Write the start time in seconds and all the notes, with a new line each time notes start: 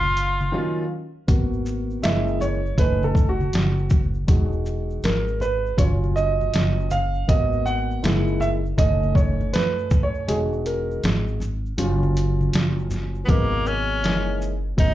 Already playing: F#1 F4 F5
0.03 high conga, shaker
0.16 closed hi-hat, shaker
0.41 high conga, shaker
0.52 D#3 F#3 A#3 C#4 F4
1.27 G#1 A#3 B3 F#4, kick, closed hi-hat, shaker
1.53 shaker
1.65 shaker
1.90 shaker
2.02 F#1 G#3 A#3 E4 D#5 E5, snare, closed hi-hat, shaker
2.28 shaker
2.40 C#5, low conga, shaker
2.66 shaker
2.78 F#1 A3 C#4 D#4 B4, kick, closed hi-hat, shaker
3.03 A4, high conga, shaker
3.15 kick, shaker
3.29 F#4
3.41 high conga, shaker
3.53 F#1, snare, closed hi-hat, shaker
3.79 shaker
3.90 kick, high conga, low conga, shaker
4.14 shaker
4.27 E1 G#3 D#4 F#4, kick, closed hi-hat, shaker
4.52 shaker
4.65 shaker
4.90 shaker
5.03 G#1 A#4, snare, closed hi-hat, shaker
5.28 shaker
5.40 B4, low conga, shaker
5.42 shaker
5.66 shaker
5.77 F#1 F#3 C#4 F4 C#5, kick, closed hi-hat, shaker
6.04 high conga, shaker
6.16 D#5, shaker
6.41 high conga, shaker
6.54 F#1, snare, closed hi-hat, shaker
6.80 shaker
6.90 F5, high conga, low conga, shaker
7.15 shaker
7.28 G#1 A#3 B3 F#4 D#5, kick, closed hi-hat, shaker
7.53 shaker
7.66 F#5, shaker
7.91 shaker
8.03 F#1 G#3 A#3 D#4 E4, snare, closed hi-hat, shaker
8.28 shaker
8.40 E5, low conga, shaker
8.42 shaker
8.66 shaker
8.77 F#1 A3 C#4 D#4 D#5, kick, closed hi-hat, shaker
9.03 high conga, shaker
9.15 C#5, kick, shaker
9.41 high conga, shaker
9.53 F#2 B4, snare, closed hi-hat, shaker
9.79 shaker
9.91 kick, high conga, low conga, shaker
10.03 C#5
10.15 shaker
10.27 E1 G#3 D#4 F#4 G#4, closed hi-hat, shaker
10.53 shaker
10.66 A#4, closed hi-hat, shaker
10.91 shaker
11.03 G#1, snare, closed hi-hat, shaker
11.28 shaker
11.40 low conga, shaker
11.66 shaker
11.78 F#1 F#3 C#4 F4, closed hi-hat, low conga, shaker
12.03 high conga, shaker
12.15 closed hi-hat, shaker
12.17 shaker
12.41 high conga, shaker
12.53 F#1, snare, closed hi-hat, shaker
12.79 shaker
12.91 snare, high conga, low conga, shaker
13.15 shaker
13.24 F#3 G#3 A#3 B3 B4
13.29 G#1 B2 A#3 D#4 A#4, kick, closed hi-hat
13.66 C#4 C#5, shaker
14.02 F#1 E3 G#3 A#3 C#4 D#4, snare, closed hi-hat
14.42 shaker
14.77 F#1 F#3 A3 B3 C#4 D#4 D#5, kick, closed hi-hat